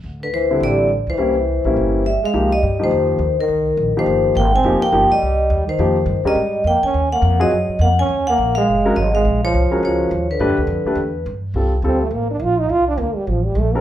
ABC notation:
X:1
M:4/4
L:1/8
Q:"Swing" 1/4=208
K:Dphr
V:1 name="Vibraphone"
z =B c2 d2 z c- | c6 =e f- | [K:Ebdor] f e2 c4 B- | B3 c3 =g a- |
a =g2 e4 c- | c3 e3 =g a- | a g2 e3 g a- | a g2 f3 e f- |
f d3 d3 =B- | =B6 z2 | [K:Cdor] z8 | z8 |]
V:2 name="Grand piano"
z3 [D,G,C=E]3 z2 | [G,B,_D=E] z2 [G,B,DE]3 z2 | [K:Ebdor] [F,B,E=G] z2 [F,B,EG]3 z2 | z3 [F,B,E=G]3 z2 |
[F,B,E=G] z [F,B,EG] z4 z | [F,B,E=G] z2 [A,DGB] z4 | z3 [G,CFA] z4 | z4 z [A,DGB] z2 |
z3 [A,DGB]3 z2 | [=A,=D=G=B] z2 [A,DGB] z4 | [K:Cdor] [G,CFA] z [G,CFA] z4 z | z6 z [DGAB] |]
V:3 name="Trombone" clef=bass
z D, =E,2 G,2 z E,- | =E,6 G, _A,- | [K:Ebdor] A, =G,2 E,4 E,- | E,3 E,3 B, C- |
C B,2 =G,4 E,- | E,3 =G,3 B, D- | D B,2 G,3 B, D- | D B,2 A,3 G, A,- |
A, F,3 F,3 =D,- | =D,6 z2 | [K:Cdor] z2 C A, B, D F E | F D B, G, F, G, A, C |]
V:4 name="Upright bass" clef=bass
D,,4 A,,,3 _D,, | C,,3 B,,, G,,,3 z | [K:Ebdor] C,,2 =G,,2 F,,2 E,,2 | C,,2 B,,, z =G,,,2 A,,,2 |
F,,, z =G,,, z C,,2 E,,2 | F,,2 (3=G,, F,, E,, A,,2 F,, z | E,,2 F,,2 G,, z F,,2 | E,,2 B,,,2 G,,,2 A,,,2 |
B,,,2 C,, z D,,2 E,,2 | (3=G,, F,, =D,, F,, z =E,,2 G,,2 | [K:Cdor] C,,2 D,,2 A,,,2 B,,,2 | C,,2 D,, z A,,,2 B,,,2 |]